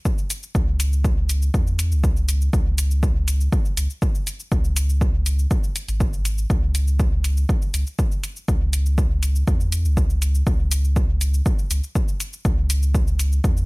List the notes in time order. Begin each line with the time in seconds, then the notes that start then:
0.05 kick, shaker
0.18 shaker
0.30 closed hi-hat, shaker
0.43 shaker
0.55 C#2, kick, shaker
0.80 closed hi-hat, shaker
0.93 shaker
1.05 kick, shaker
1.29 closed hi-hat, shaker
1.42 shaker
1.54 E2, kick, shaker
1.67 shaker
1.79 closed hi-hat, shaker
1.92 C#2, shaker
2.04 kick, shaker
2.17 shaker
2.29 closed hi-hat, shaker
2.41 shaker
2.53 C#2, kick, shaker
2.78 closed hi-hat, shaker
2.91 shaker
3.03 kick, shaker
3.28 closed hi-hat, shaker
3.41 shaker
3.52 kick, shaker
3.65 shaker
3.77 C#2, closed hi-hat, shaker
3.90 shaker
4.02 kick, shaker
4.15 shaker
4.27 closed hi-hat, shaker
4.40 shaker
4.52 C#2, kick, shaker
4.65 shaker
4.76 closed hi-hat, shaker
4.89 shaker
5.01 kick, shaker
5.26 closed hi-hat, shaker
5.39 shaker
5.51 kick, shaker
5.64 shaker
5.76 closed hi-hat, shaker
5.88 G#1, closed hi-hat, shaker
6.00 kick, shaker
6.13 shaker
6.25 closed hi-hat, shaker
6.38 shaker
6.50 C#2, kick, shaker
6.75 closed hi-hat, shaker
6.88 shaker
7.00 kick, shaker
7.24 closed hi-hat, shaker
7.37 shaker
7.49 kick, shaker
7.62 shaker
7.74 C#2, closed hi-hat, shaker
7.87 shaker
7.99 kick, shaker
8.12 shaker
8.24 closed hi-hat, shaker
8.36 shaker
8.48 C#2, kick, shaker
8.73 closed hi-hat, shaker
8.86 shaker
8.98 kick, shaker
9.23 closed hi-hat, shaker
9.36 shaker
9.47 E2, kick, shaker
9.60 shaker
9.72 closed hi-hat, shaker
9.85 C#2, shaker
9.97 kick, shaker
10.10 shaker
10.22 closed hi-hat, shaker
10.35 shaker
10.47 C#2, kick, shaker
10.71 closed hi-hat, shaker
10.84 shaker
10.96 kick, shaker
11.21 closed hi-hat, shaker
11.34 shaker
11.46 kick, shaker
11.59 shaker
11.71 C#2, closed hi-hat, shaker
11.84 shaker
11.95 kick, shaker
12.08 shaker
12.20 closed hi-hat, shaker
12.33 shaker
12.45 C#2, kick, shaker
12.70 closed hi-hat, shaker
12.83 shaker
12.95 kick, shaker
13.08 shaker
13.19 closed hi-hat, shaker
13.32 shaker
13.44 E2, kick, shaker
13.57 shaker